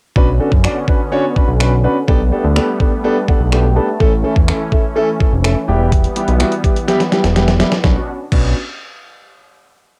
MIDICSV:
0, 0, Header, 1, 5, 480
1, 0, Start_track
1, 0, Key_signature, 2, "minor"
1, 0, Tempo, 480000
1, 161, Time_signature, 4, 2, 24, 8
1, 9997, End_track
2, 0, Start_track
2, 0, Title_t, "Grand piano"
2, 0, Program_c, 0, 0
2, 157, Note_on_c, 0, 61, 106
2, 158, Note_on_c, 0, 62, 98
2, 160, Note_on_c, 0, 66, 94
2, 162, Note_on_c, 0, 71, 113
2, 269, Note_off_c, 0, 61, 0
2, 269, Note_off_c, 0, 62, 0
2, 270, Note_off_c, 0, 66, 0
2, 271, Note_off_c, 0, 71, 0
2, 397, Note_on_c, 0, 61, 83
2, 399, Note_on_c, 0, 62, 75
2, 401, Note_on_c, 0, 66, 74
2, 402, Note_on_c, 0, 69, 90
2, 509, Note_off_c, 0, 61, 0
2, 510, Note_off_c, 0, 62, 0
2, 511, Note_off_c, 0, 66, 0
2, 511, Note_off_c, 0, 69, 0
2, 638, Note_on_c, 0, 61, 77
2, 640, Note_on_c, 0, 62, 76
2, 641, Note_on_c, 0, 66, 75
2, 644, Note_on_c, 0, 74, 90
2, 750, Note_off_c, 0, 61, 0
2, 750, Note_off_c, 0, 62, 0
2, 751, Note_off_c, 0, 66, 0
2, 752, Note_off_c, 0, 74, 0
2, 879, Note_on_c, 0, 61, 83
2, 881, Note_on_c, 0, 62, 74
2, 883, Note_on_c, 0, 66, 75
2, 884, Note_on_c, 0, 71, 87
2, 990, Note_off_c, 0, 61, 0
2, 991, Note_off_c, 0, 62, 0
2, 992, Note_off_c, 0, 66, 0
2, 992, Note_off_c, 0, 71, 0
2, 1117, Note_on_c, 0, 61, 105
2, 1119, Note_on_c, 0, 62, 94
2, 1121, Note_on_c, 0, 66, 94
2, 1122, Note_on_c, 0, 73, 113
2, 1229, Note_off_c, 0, 61, 0
2, 1230, Note_off_c, 0, 62, 0
2, 1231, Note_off_c, 0, 66, 0
2, 1231, Note_off_c, 0, 73, 0
2, 1357, Note_on_c, 0, 61, 82
2, 1359, Note_on_c, 0, 62, 79
2, 1360, Note_on_c, 0, 66, 80
2, 1362, Note_on_c, 0, 71, 95
2, 1469, Note_off_c, 0, 61, 0
2, 1470, Note_off_c, 0, 62, 0
2, 1470, Note_off_c, 0, 66, 0
2, 1471, Note_off_c, 0, 71, 0
2, 1598, Note_on_c, 0, 61, 79
2, 1600, Note_on_c, 0, 62, 73
2, 1602, Note_on_c, 0, 66, 72
2, 1604, Note_on_c, 0, 71, 91
2, 1710, Note_off_c, 0, 61, 0
2, 1710, Note_off_c, 0, 62, 0
2, 1712, Note_off_c, 0, 66, 0
2, 1713, Note_off_c, 0, 71, 0
2, 1837, Note_on_c, 0, 61, 83
2, 1839, Note_on_c, 0, 62, 74
2, 1840, Note_on_c, 0, 66, 75
2, 1842, Note_on_c, 0, 71, 94
2, 1949, Note_off_c, 0, 61, 0
2, 1950, Note_off_c, 0, 62, 0
2, 1950, Note_off_c, 0, 66, 0
2, 1951, Note_off_c, 0, 71, 0
2, 2077, Note_on_c, 0, 59, 105
2, 2078, Note_on_c, 0, 62, 95
2, 2080, Note_on_c, 0, 67, 94
2, 2081, Note_on_c, 0, 69, 116
2, 2189, Note_off_c, 0, 59, 0
2, 2190, Note_off_c, 0, 62, 0
2, 2190, Note_off_c, 0, 67, 0
2, 2191, Note_off_c, 0, 69, 0
2, 2319, Note_on_c, 0, 59, 83
2, 2320, Note_on_c, 0, 62, 75
2, 2321, Note_on_c, 0, 67, 78
2, 2324, Note_on_c, 0, 69, 93
2, 2430, Note_off_c, 0, 59, 0
2, 2430, Note_off_c, 0, 62, 0
2, 2431, Note_off_c, 0, 67, 0
2, 2432, Note_off_c, 0, 69, 0
2, 2561, Note_on_c, 0, 59, 83
2, 2562, Note_on_c, 0, 62, 74
2, 2564, Note_on_c, 0, 67, 75
2, 2566, Note_on_c, 0, 69, 95
2, 2671, Note_off_c, 0, 59, 0
2, 2671, Note_off_c, 0, 62, 0
2, 2672, Note_off_c, 0, 67, 0
2, 2673, Note_off_c, 0, 69, 0
2, 2799, Note_on_c, 0, 59, 79
2, 2802, Note_on_c, 0, 62, 74
2, 2804, Note_on_c, 0, 67, 72
2, 2806, Note_on_c, 0, 69, 87
2, 2910, Note_off_c, 0, 59, 0
2, 2911, Note_off_c, 0, 62, 0
2, 2912, Note_off_c, 0, 67, 0
2, 2913, Note_off_c, 0, 69, 0
2, 3040, Note_on_c, 0, 59, 105
2, 3041, Note_on_c, 0, 62, 96
2, 3044, Note_on_c, 0, 67, 92
2, 3045, Note_on_c, 0, 69, 113
2, 3150, Note_off_c, 0, 59, 0
2, 3151, Note_off_c, 0, 62, 0
2, 3152, Note_off_c, 0, 67, 0
2, 3153, Note_off_c, 0, 69, 0
2, 3282, Note_on_c, 0, 59, 87
2, 3284, Note_on_c, 0, 62, 77
2, 3284, Note_on_c, 0, 78, 73
2, 3286, Note_on_c, 0, 67, 81
2, 3288, Note_on_c, 0, 69, 92
2, 3391, Note_off_c, 0, 59, 0
2, 3392, Note_off_c, 0, 62, 0
2, 3393, Note_off_c, 0, 67, 0
2, 3394, Note_off_c, 0, 69, 0
2, 3506, Note_off_c, 0, 78, 0
2, 3519, Note_on_c, 0, 59, 82
2, 3520, Note_on_c, 0, 62, 76
2, 3521, Note_on_c, 0, 79, 73
2, 3522, Note_on_c, 0, 67, 75
2, 3523, Note_on_c, 0, 69, 86
2, 3630, Note_off_c, 0, 59, 0
2, 3630, Note_off_c, 0, 62, 0
2, 3631, Note_off_c, 0, 67, 0
2, 3632, Note_off_c, 0, 69, 0
2, 3744, Note_off_c, 0, 79, 0
2, 3758, Note_on_c, 0, 59, 81
2, 3760, Note_on_c, 0, 62, 75
2, 3761, Note_on_c, 0, 81, 69
2, 3762, Note_on_c, 0, 67, 74
2, 3763, Note_on_c, 0, 69, 90
2, 3869, Note_off_c, 0, 59, 0
2, 3870, Note_off_c, 0, 62, 0
2, 3871, Note_off_c, 0, 67, 0
2, 3872, Note_off_c, 0, 69, 0
2, 3985, Note_off_c, 0, 81, 0
2, 3998, Note_on_c, 0, 57, 106
2, 4000, Note_on_c, 0, 61, 100
2, 4002, Note_on_c, 0, 64, 97
2, 4003, Note_on_c, 0, 69, 119
2, 4110, Note_off_c, 0, 57, 0
2, 4110, Note_off_c, 0, 61, 0
2, 4111, Note_off_c, 0, 64, 0
2, 4112, Note_off_c, 0, 69, 0
2, 4238, Note_on_c, 0, 57, 88
2, 4239, Note_on_c, 0, 61, 75
2, 4242, Note_on_c, 0, 64, 78
2, 4243, Note_on_c, 0, 69, 96
2, 4349, Note_off_c, 0, 57, 0
2, 4350, Note_off_c, 0, 61, 0
2, 4351, Note_off_c, 0, 64, 0
2, 4352, Note_off_c, 0, 69, 0
2, 4479, Note_on_c, 0, 57, 83
2, 4482, Note_on_c, 0, 61, 78
2, 4482, Note_on_c, 0, 64, 78
2, 4484, Note_on_c, 0, 69, 94
2, 4590, Note_off_c, 0, 57, 0
2, 4591, Note_off_c, 0, 61, 0
2, 4591, Note_off_c, 0, 64, 0
2, 4592, Note_off_c, 0, 69, 0
2, 4718, Note_on_c, 0, 57, 78
2, 4721, Note_on_c, 0, 61, 72
2, 4722, Note_on_c, 0, 64, 77
2, 4725, Note_on_c, 0, 69, 91
2, 4829, Note_off_c, 0, 57, 0
2, 4831, Note_off_c, 0, 61, 0
2, 4831, Note_off_c, 0, 64, 0
2, 4833, Note_off_c, 0, 69, 0
2, 4956, Note_on_c, 0, 57, 107
2, 4958, Note_on_c, 0, 61, 96
2, 4960, Note_on_c, 0, 64, 94
2, 4962, Note_on_c, 0, 69, 119
2, 5068, Note_off_c, 0, 57, 0
2, 5069, Note_off_c, 0, 61, 0
2, 5070, Note_off_c, 0, 64, 0
2, 5072, Note_off_c, 0, 69, 0
2, 5198, Note_on_c, 0, 57, 88
2, 5201, Note_on_c, 0, 61, 80
2, 5202, Note_on_c, 0, 64, 77
2, 5204, Note_on_c, 0, 69, 94
2, 5310, Note_off_c, 0, 57, 0
2, 5311, Note_off_c, 0, 61, 0
2, 5311, Note_off_c, 0, 64, 0
2, 5312, Note_off_c, 0, 69, 0
2, 5439, Note_on_c, 0, 57, 85
2, 5440, Note_on_c, 0, 61, 79
2, 5443, Note_on_c, 0, 64, 77
2, 5445, Note_on_c, 0, 69, 94
2, 5550, Note_off_c, 0, 57, 0
2, 5550, Note_off_c, 0, 61, 0
2, 5552, Note_off_c, 0, 64, 0
2, 5553, Note_off_c, 0, 69, 0
2, 5678, Note_on_c, 0, 55, 83
2, 5680, Note_on_c, 0, 59, 79
2, 5681, Note_on_c, 0, 64, 79
2, 5684, Note_on_c, 0, 67, 92
2, 6063, Note_off_c, 0, 55, 0
2, 6065, Note_off_c, 0, 59, 0
2, 6065, Note_off_c, 0, 64, 0
2, 6066, Note_off_c, 0, 67, 0
2, 6157, Note_on_c, 0, 55, 81
2, 6159, Note_on_c, 0, 59, 77
2, 6160, Note_on_c, 0, 64, 76
2, 6163, Note_on_c, 0, 67, 94
2, 6269, Note_off_c, 0, 55, 0
2, 6270, Note_off_c, 0, 59, 0
2, 6270, Note_off_c, 0, 64, 0
2, 6272, Note_off_c, 0, 67, 0
2, 6396, Note_on_c, 0, 55, 83
2, 6398, Note_on_c, 0, 59, 79
2, 6400, Note_on_c, 0, 64, 78
2, 6402, Note_on_c, 0, 66, 91
2, 6508, Note_off_c, 0, 55, 0
2, 6509, Note_off_c, 0, 59, 0
2, 6510, Note_off_c, 0, 64, 0
2, 6511, Note_off_c, 0, 66, 0
2, 6636, Note_on_c, 0, 55, 81
2, 6638, Note_on_c, 0, 59, 75
2, 6640, Note_on_c, 0, 64, 71
2, 6641, Note_on_c, 0, 67, 85
2, 6748, Note_off_c, 0, 55, 0
2, 6749, Note_off_c, 0, 59, 0
2, 6750, Note_off_c, 0, 64, 0
2, 6751, Note_off_c, 0, 67, 0
2, 6877, Note_on_c, 0, 55, 107
2, 6878, Note_on_c, 0, 59, 92
2, 6879, Note_on_c, 0, 64, 98
2, 6881, Note_on_c, 0, 67, 121
2, 6989, Note_off_c, 0, 55, 0
2, 6989, Note_off_c, 0, 59, 0
2, 6990, Note_off_c, 0, 64, 0
2, 6991, Note_off_c, 0, 67, 0
2, 7116, Note_on_c, 0, 55, 83
2, 7118, Note_on_c, 0, 59, 75
2, 7120, Note_on_c, 0, 64, 77
2, 7121, Note_on_c, 0, 67, 89
2, 7228, Note_off_c, 0, 55, 0
2, 7229, Note_off_c, 0, 59, 0
2, 7230, Note_off_c, 0, 64, 0
2, 7231, Note_off_c, 0, 67, 0
2, 7358, Note_on_c, 0, 55, 80
2, 7359, Note_on_c, 0, 59, 76
2, 7360, Note_on_c, 0, 64, 74
2, 7361, Note_on_c, 0, 67, 94
2, 7469, Note_off_c, 0, 55, 0
2, 7470, Note_off_c, 0, 59, 0
2, 7470, Note_off_c, 0, 64, 0
2, 7471, Note_off_c, 0, 67, 0
2, 7595, Note_on_c, 0, 55, 84
2, 7597, Note_on_c, 0, 59, 71
2, 7599, Note_on_c, 0, 64, 78
2, 7601, Note_on_c, 0, 67, 89
2, 7708, Note_off_c, 0, 55, 0
2, 7709, Note_off_c, 0, 59, 0
2, 7710, Note_off_c, 0, 64, 0
2, 7711, Note_off_c, 0, 67, 0
2, 7841, Note_on_c, 0, 66, 86
2, 7842, Note_on_c, 0, 59, 76
2, 7842, Note_on_c, 0, 61, 71
2, 7842, Note_on_c, 0, 62, 72
2, 7975, Note_off_c, 0, 66, 0
2, 7976, Note_off_c, 0, 59, 0
2, 7976, Note_off_c, 0, 61, 0
2, 7976, Note_off_c, 0, 62, 0
2, 8318, Note_on_c, 0, 61, 75
2, 8318, Note_on_c, 0, 62, 73
2, 8319, Note_on_c, 0, 59, 81
2, 8319, Note_on_c, 0, 66, 88
2, 8543, Note_off_c, 0, 59, 0
2, 8543, Note_off_c, 0, 61, 0
2, 8543, Note_off_c, 0, 62, 0
2, 8543, Note_off_c, 0, 66, 0
2, 9997, End_track
3, 0, Start_track
3, 0, Title_t, "Supersaw synth"
3, 0, Program_c, 1, 81
3, 157, Note_on_c, 1, 50, 74
3, 158, Note_on_c, 1, 59, 71
3, 158, Note_on_c, 1, 61, 85
3, 2060, Note_off_c, 1, 50, 0
3, 2060, Note_off_c, 1, 59, 0
3, 2061, Note_off_c, 1, 61, 0
3, 2081, Note_on_c, 1, 55, 76
3, 2082, Note_on_c, 1, 57, 70
3, 2082, Note_on_c, 1, 59, 86
3, 3982, Note_off_c, 1, 55, 0
3, 3982, Note_off_c, 1, 59, 0
3, 4000, Note_on_c, 1, 61, 82
3, 4003, Note_on_c, 1, 52, 74
3, 5646, Note_off_c, 1, 57, 0
3, 5664, Note_off_c, 1, 61, 0
3, 5682, Note_on_c, 1, 55, 70
3, 5682, Note_on_c, 1, 59, 84
3, 7804, Note_off_c, 1, 52, 0
3, 7820, Note_off_c, 1, 55, 0
3, 7820, Note_off_c, 1, 59, 0
3, 7837, Note_on_c, 1, 59, 66
3, 7838, Note_on_c, 1, 47, 74
3, 7838, Note_on_c, 1, 61, 65
3, 7838, Note_on_c, 1, 62, 65
3, 7838, Note_on_c, 1, 66, 78
3, 8062, Note_off_c, 1, 59, 0
3, 8063, Note_off_c, 1, 47, 0
3, 8063, Note_off_c, 1, 61, 0
3, 8063, Note_off_c, 1, 62, 0
3, 8063, Note_off_c, 1, 66, 0
3, 9997, End_track
4, 0, Start_track
4, 0, Title_t, "Analog synth bass"
4, 0, Program_c, 2, 38
4, 161, Note_on_c, 2, 35, 100
4, 397, Note_off_c, 2, 35, 0
4, 518, Note_on_c, 2, 42, 95
4, 677, Note_off_c, 2, 42, 0
4, 1480, Note_on_c, 2, 35, 82
4, 1874, Note_off_c, 2, 35, 0
4, 2082, Note_on_c, 2, 35, 101
4, 2318, Note_off_c, 2, 35, 0
4, 2441, Note_on_c, 2, 38, 92
4, 2598, Note_off_c, 2, 38, 0
4, 3401, Note_on_c, 2, 35, 83
4, 3795, Note_off_c, 2, 35, 0
4, 4003, Note_on_c, 2, 33, 103
4, 4239, Note_off_c, 2, 33, 0
4, 4361, Note_on_c, 2, 40, 97
4, 4519, Note_off_c, 2, 40, 0
4, 5321, Note_on_c, 2, 29, 81
4, 5557, Note_off_c, 2, 29, 0
4, 5683, Note_on_c, 2, 28, 97
4, 6076, Note_off_c, 2, 28, 0
4, 6282, Note_on_c, 2, 35, 96
4, 6439, Note_off_c, 2, 35, 0
4, 7242, Note_on_c, 2, 28, 82
4, 7635, Note_off_c, 2, 28, 0
4, 7839, Note_on_c, 2, 35, 100
4, 7974, Note_off_c, 2, 35, 0
4, 8320, Note_on_c, 2, 35, 93
4, 8544, Note_off_c, 2, 35, 0
4, 9997, End_track
5, 0, Start_track
5, 0, Title_t, "Drums"
5, 160, Note_on_c, 9, 36, 105
5, 260, Note_off_c, 9, 36, 0
5, 519, Note_on_c, 9, 36, 91
5, 619, Note_off_c, 9, 36, 0
5, 641, Note_on_c, 9, 26, 109
5, 741, Note_off_c, 9, 26, 0
5, 879, Note_on_c, 9, 36, 91
5, 979, Note_off_c, 9, 36, 0
5, 1363, Note_on_c, 9, 36, 87
5, 1463, Note_off_c, 9, 36, 0
5, 1602, Note_on_c, 9, 26, 113
5, 1702, Note_off_c, 9, 26, 0
5, 2082, Note_on_c, 9, 36, 111
5, 2182, Note_off_c, 9, 36, 0
5, 2562, Note_on_c, 9, 26, 112
5, 2662, Note_off_c, 9, 26, 0
5, 2800, Note_on_c, 9, 36, 90
5, 2900, Note_off_c, 9, 36, 0
5, 3284, Note_on_c, 9, 36, 92
5, 3384, Note_off_c, 9, 36, 0
5, 3522, Note_on_c, 9, 26, 112
5, 3622, Note_off_c, 9, 26, 0
5, 4002, Note_on_c, 9, 36, 107
5, 4102, Note_off_c, 9, 36, 0
5, 4360, Note_on_c, 9, 36, 89
5, 4460, Note_off_c, 9, 36, 0
5, 4482, Note_on_c, 9, 26, 111
5, 4581, Note_off_c, 9, 26, 0
5, 4720, Note_on_c, 9, 36, 88
5, 4820, Note_off_c, 9, 36, 0
5, 5203, Note_on_c, 9, 36, 92
5, 5303, Note_off_c, 9, 36, 0
5, 5442, Note_on_c, 9, 26, 110
5, 5542, Note_off_c, 9, 26, 0
5, 5921, Note_on_c, 9, 42, 83
5, 5922, Note_on_c, 9, 36, 104
5, 6021, Note_off_c, 9, 42, 0
5, 6022, Note_off_c, 9, 36, 0
5, 6040, Note_on_c, 9, 42, 51
5, 6140, Note_off_c, 9, 42, 0
5, 6160, Note_on_c, 9, 42, 77
5, 6260, Note_off_c, 9, 42, 0
5, 6278, Note_on_c, 9, 42, 46
5, 6378, Note_off_c, 9, 42, 0
5, 6398, Note_on_c, 9, 42, 84
5, 6401, Note_on_c, 9, 26, 112
5, 6498, Note_off_c, 9, 42, 0
5, 6501, Note_off_c, 9, 26, 0
5, 6518, Note_on_c, 9, 42, 45
5, 6618, Note_off_c, 9, 42, 0
5, 6640, Note_on_c, 9, 36, 87
5, 6643, Note_on_c, 9, 42, 70
5, 6740, Note_off_c, 9, 36, 0
5, 6743, Note_off_c, 9, 42, 0
5, 6764, Note_on_c, 9, 42, 59
5, 6864, Note_off_c, 9, 42, 0
5, 6882, Note_on_c, 9, 38, 55
5, 6884, Note_on_c, 9, 42, 86
5, 6982, Note_off_c, 9, 38, 0
5, 6984, Note_off_c, 9, 42, 0
5, 7002, Note_on_c, 9, 38, 53
5, 7004, Note_on_c, 9, 42, 50
5, 7102, Note_off_c, 9, 38, 0
5, 7104, Note_off_c, 9, 42, 0
5, 7121, Note_on_c, 9, 38, 66
5, 7122, Note_on_c, 9, 42, 66
5, 7221, Note_off_c, 9, 38, 0
5, 7222, Note_off_c, 9, 42, 0
5, 7240, Note_on_c, 9, 42, 51
5, 7241, Note_on_c, 9, 38, 66
5, 7340, Note_off_c, 9, 42, 0
5, 7341, Note_off_c, 9, 38, 0
5, 7361, Note_on_c, 9, 38, 80
5, 7362, Note_on_c, 9, 42, 85
5, 7461, Note_off_c, 9, 38, 0
5, 7462, Note_off_c, 9, 42, 0
5, 7480, Note_on_c, 9, 38, 76
5, 7480, Note_on_c, 9, 42, 50
5, 7580, Note_off_c, 9, 38, 0
5, 7580, Note_off_c, 9, 42, 0
5, 7600, Note_on_c, 9, 38, 93
5, 7600, Note_on_c, 9, 42, 79
5, 7699, Note_off_c, 9, 38, 0
5, 7700, Note_off_c, 9, 42, 0
5, 7717, Note_on_c, 9, 42, 48
5, 7719, Note_on_c, 9, 38, 85
5, 7817, Note_off_c, 9, 42, 0
5, 7819, Note_off_c, 9, 38, 0
5, 7839, Note_on_c, 9, 38, 85
5, 7840, Note_on_c, 9, 36, 107
5, 7939, Note_off_c, 9, 38, 0
5, 7940, Note_off_c, 9, 36, 0
5, 8320, Note_on_c, 9, 36, 100
5, 8320, Note_on_c, 9, 49, 83
5, 8420, Note_off_c, 9, 36, 0
5, 8420, Note_off_c, 9, 49, 0
5, 9997, End_track
0, 0, End_of_file